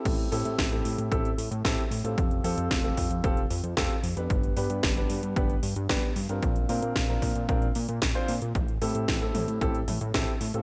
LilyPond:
<<
  \new Staff \with { instrumentName = "Grand piano" } { \time 4/4 \key a \minor \tempo 4 = 113 <c' e' g' a'>8 <c' e' g' a'>8. <c' e' g' a'>8. <c' e' g' a'>16 r8. <c' e' g' a'>16 r8 <c' f' g' a'>16~ | <c' f' g' a'>8 <c' f' g' a'>8. <c' f' g' a'>8. <c' f' g' a'>16 r8. <c' f' g' a'>16 r8 <b d' g' b'>16~ | <b d' g' b'>8 <b d' g' b'>8. <b d' g' b'>8. <b d' g' b'>16 r8. <b d' g' b'>16 r8 <c' d' f' bes'>16~ | <c' d' f' bes'>8 <c' d' f' bes'>8. <c' d' f' bes'>8. <c' d' f' bes'>16 r4 <c' d' f' c''>16 r8 |
r8 <c' e' g' a'>8. <c' e' g' a'>8. <c' e' g' a'>16 r8. <c' e' g' a'>16 r8 <c' f' g' a'>16 | }
  \new Staff \with { instrumentName = "Analog synth bass" } { \clef bass \time 4/4 \key a \minor a,,8 a,16 a,16 a,,8 a,16 a,16 a,,8 a,16 a,16 a,,16 r16 a,16 a,16 | f,,8 f,16 f,16 f,,8 f,16 f,16 f,,8 f,16 f,16 f,,16 r16 f,16 f,16 | g,,8 g,16 g,16 g,,8 g,16 g,16 g,,8 g,16 g,16 g,,16 r16 g,16 g,16 | bes,,8 bes,16 bes,16 bes,,8 bes,16 bes,16 bes,,8 bes,16 bes,16 bes,,16 r16 bes,16 bes,16 |
a,,8 a,16 a,16 a,,8 a,16 a,16 a,,8 a,16 a,16 a,,16 r16 a,16 a,16 | }
  \new DrumStaff \with { instrumentName = "Drums" } \drummode { \time 4/4 <cymc hh bd>16 hh16 hho16 hh16 <hh bd sn>16 hh16 hho16 hh16 <hh bd>16 hh16 hho16 hh16 <hh bd sn>16 hh16 hho16 hh16 | <hh bd>16 hh16 hho16 hh16 <hh bd sn>16 hh16 <hho bd>16 hh16 <hh bd>16 hh16 hho16 hh16 <hh bd sn>16 hh16 hho16 hh16 | <hh bd>16 hh16 hho16 hh16 <hh bd sn>16 hh16 hho16 hh16 <hh bd>16 hh16 hho16 hh16 <hh bd sn>16 hh16 hho16 hh16 | <hh bd>16 hh16 hho16 hh16 <hh bd sn>16 hh16 <hho bd>16 hh16 <hh bd>16 hh16 hho16 hh16 <hh bd sn>16 hh16 hho16 hh16 |
<hh bd>16 hh16 hho16 hh16 <hh bd sn tommh>16 hh16 <hho tommh>16 hh16 <hh bd>16 hh16 <hho tommh>16 hh16 <hh bd sn>16 hh16 hho16 hh16 | }
>>